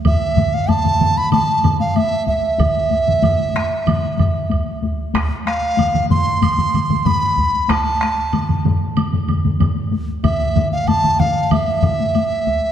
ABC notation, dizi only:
X:1
M:4/4
L:1/16
Q:1/4=94
K:none
V:1 name="Dizi"
e3 f a3 b a3 f e2 e2- | e12- e2 z2 | z2 f4 c'6 b4 | a6 z8 z2 |
e3 f a2 f2 e8 |]